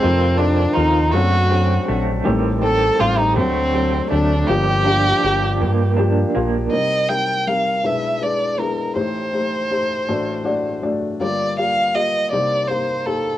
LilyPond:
<<
  \new Staff \with { instrumentName = "Violin" } { \time 6/8 \key g \minor \tempo 4. = 54 c'8 d'8 ees'8 fis'4 r8 | r8 a'8 f'16 ees'16 c'4 d'8 | g'2 r4 | ees''8 g''8 f''8 e''8 d''8 bes'8 |
c''2~ c''8 r8 | d''8 f''8 ees''8 d''8 c''8 a'8 | }
  \new Staff \with { instrumentName = "Felt piano" } { \time 6/8 \key g \minor <f c' ees' a'>8 <f c' ees' a'>8 <f c' ees' a'>8 <fis c' d' a'>8 <fis c' d' a'>8 <fis c' d' a'>8 | <g c' ees' a'>8 <g c' ees' a'>8 <g c' ees' a'>8 <fis c' d' a'>8 <fis c' d' a'>8 <fis c' d' a'>8 | <f bes d' g'>8 <f bes d' g'>8 <f bes d' g'>8. r16 <f bes d' g'>8 <f bes d' f'>8 | <g c' ees' bes'>8 <g c' ees' bes'>8 <g c' ees' bes'>8 <gis d' e' b'>8 <gis d' e' b'>8 <gis b d' e'>8 |
<a ees' g' c''>8 <a ees' g' c''>8 <a ees' g' c''>8 <a d' fis' d''>8 <a d' fis' d'' fis''>8 <a d' fis' d''>8 | <bes f' g' d''>8 <bes f' g' d''>8 <bes f' g' f''>8 <bes ees' g' c''>8 <bes ees' g' c''>8 <bes ees' g' c''>8 | }
  \new Staff \with { instrumentName = "Felt piano" } { \clef bass \time 6/8 \key g \minor <f,, f,>4. <fis,, fis,>4. | <a,, a,>4. <d, d>4. | <g,, g,>2. | <c, c>4. <b,, b,>4. |
<a,, a,>4. <a,, a,>4. | <g,, g,>4. <c, c>4. | }
  \new Staff \with { instrumentName = "Clean electric guitar" } { \time 6/8 \key g \minor <ees f'>8 c'8 f'8 a8 c'8 a8 | <ees g'>8 c'8 g'8 a8 c'8 a8 | <f g'>8 d'8 g'8 bes8 d'8 bes8 | r2. |
r2. | r2. | }
  \new Staff \with { instrumentName = "Fingered electric bass" } { \clef bass \time 6/8 \key g \minor f,4 ees,8 fis,4 bes,,8 | a,,4 a,,8 d,4 d,8 | g,,4 g,,8 g,4 bes,,8 | r2. |
r2. | r2. | }
>>